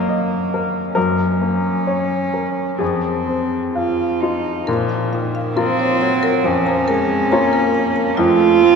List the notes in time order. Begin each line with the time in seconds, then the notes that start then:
Already playing: F#2 A#3 A#4 C#5 D#5
0.09 D#5
0.54 A#4
0.95 F#2 C#4 A#4
1.42 A#3
1.87 C#5
2.34 A#4
2.79 F2 C4 G#4
3.28 C4
3.73 F4 F5
4.21 D#4 F4
4.67 A#2 F3 A#4
4.89 F5
5.13 D#3 F5
5.35 F5
5.56 F3 A#3 C4 F4 A#4
5.80 C#5
6.01 F#3 C#5
6.23 A#4
6.44 F2 F3 C#4
6.66 A#5
6.88 G#3 A#4
7.31 A#3 F4 C#5 A#5
7.53 A#4
7.74 A#5
7.96 A#5
8.17 F2 A3 F4
8.39 C5
8.61 C4 C5